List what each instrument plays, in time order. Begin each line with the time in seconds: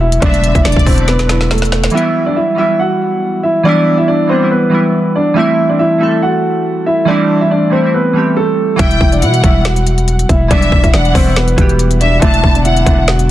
Already playing: 808-style bass E1, synth keys D3 F#3 A3 B3 D4
0.01 grand piano E4 E5
0.12 closed hi-hat
0.20 808-style bass E1, synth keys D3 F#3 A3 B3, grand piano D4 D5, violin section E5, kick, closed hi-hat
0.25 synth keys D4
0.34 closed hi-hat
0.44 closed hi-hat
0.55 808-style bass E1, grand piano E4 E5, kick, closed hi-hat
0.65 808-style bass E1, grand piano D4 D5, violin section D5, snare, closed hi-hat
0.72 closed hi-hat
0.76 808-style bass E1, kick, closed hi-hat
0.84 synth keys D3 F#3 A3 B3, grand piano C4 C5, kick, open hi-hat
0.89 synth keys E4
0.96 synth keys D3 F#3 A3 B3, closed hi-hat
1.01 synth keys E4
1.08 grand piano B3 B4, snare, closed hi-hat
1.19 snare, closed hi-hat
1.27 synth keys D3 F#3 A3 B3, snare, closed hi-hat
1.32 synth keys E4
1.41 snare
1.51 grand piano A3 A4, snare, closed hi-hat
1.58 closed hi-hat
1.62 snare, closed hi-hat
1.72 snare
1.84 snare, closed hi-hat
1.90 synth keys E3 F#3 G3, grand piano E5, closed hi-hat
1.95 synth keys B3 E4, grand piano E4, closed hi-hat
2.26 grand piano D4 D5
2.36 grand piano E4 E5
2.55 synth keys E3 F#3 G3 B3, grand piano E5
2.59 grand piano E4, synth keys E4
2.79 grand piano F#4 F#5
3.43 grand piano E4 E5
3.63 synth keys E3 F#3 G3 B3, grand piano D4 D5
3.68 synth keys E4
3.98 grand piano E4 E5
4.08 grand piano D4 D5
4.28 synth keys E3 F#3 G3 B3, grand piano C4 C5
4.33 synth keys D4
4.39 synth keys E3 F#3 G3 B3
4.44 synth keys E4
4.51 grand piano B3 B4
4.70 synth keys E3 F#3 G3 B3
4.75 synth keys E4
5.16 grand piano D4 D5
5.34 synth keys E3 G3 A3 C4, grand piano E4 E5
5.39 synth keys E4
5.69 grand piano D4 D5
5.79 grand piano E4 E5
5.98 synth keys E3 G3 A3 C4, grand piano E4 E5
6.03 synth keys A4
6.22 grand piano F#4 F#5
6.86 grand piano E4 E5
7.05 synth keys E3 G3 A3 C4, grand piano D4 D5
7.10 synth keys E4
7.41 grand piano E4 E5
7.51 grand piano D4 D5
7.70 synth keys E3 G3 A3 C4, grand piano C4 C5
7.75 synth keys E4
7.81 synth keys E3 G3 A3 C4
7.86 synth keys E4
7.94 grand piano B3 B4
8.13 synth keys E3 G3 A3 C4
8.18 synth keys G4
8.37 grand piano A3 A4
8.76 808-style bass E1, synth keys E3 F#3 G3 B3, grand piano E4 E5, violin section G5, kick, closed hi-hat
8.81 synth keys E4
8.91 closed hi-hat
9.01 808-style bass E1, kick
9.12 grand piano D4 D5, closed hi-hat
9.22 808-style bass B2, grand piano E4 E5, violin section F#5, closed hi-hat
9.34 closed hi-hat
9.41 808-style bass E1, synth keys E3 F#3 G3 B3, grand piano E4 E5, kick, closed hi-hat
9.46 synth keys E4
9.65 grand piano F#4 F#5, snare, closed hi-hat
9.76 closed hi-hat
9.87 closed hi-hat
9.98 closed hi-hat
10.08 closed hi-hat
10.19 closed hi-hat
10.29 808-style bass E1, grand piano E4 E5, kick, closed hi-hat
10.48 808-style bass E1, synth keys E3 F#3 G3 B3, grand piano D4 D5, violin section E5, kick, closed hi-hat
10.53 synth keys E4
10.62 closed hi-hat
10.72 808-style bass E1, kick
10.83 grand piano E4 E5, kick, closed hi-hat
10.94 808-style bass E1, grand piano D4 D5, violin section F#5, snare, closed hi-hat
11.05 closed hi-hat
11.12 808-style bass E1, synth keys E3 F#3 G3 B3, grand piano C4 C5, kick, open hi-hat
11.17 synth keys E4
11.24 synth keys E3 F#3 G3 B3
11.29 synth keys E4
11.36 grand piano B3 B4, snare, closed hi-hat
11.48 closed hi-hat
11.56 808-style bass E1, synth keys E3 G3 B3 F#4, kick, closed hi-hat
11.61 synth keys G4
11.69 closed hi-hat
11.79 closed hi-hat
11.91 closed hi-hat
12.01 grand piano D4 D5, violin section E5, closed hi-hat
12.20 808-style bass E1, synth keys D3 F#3 A3 B3, grand piano E4 E5, violin section A5, kick, closed hi-hat
12.25 synth keys D4
12.34 closed hi-hat
12.44 808-style bass E1, kick
12.55 grand piano D4 D5, closed hi-hat
12.65 grand piano E4 E5, violin section F#5, closed hi-hat
12.77 closed hi-hat
12.85 808-style bass E1, synth keys D3 F#3 A3 B3, grand piano E4 E5, kick, closed hi-hat
12.90 synth keys D4
13.08 grand piano F#4 F#5, snare, closed hi-hat
13.19 closed hi-hat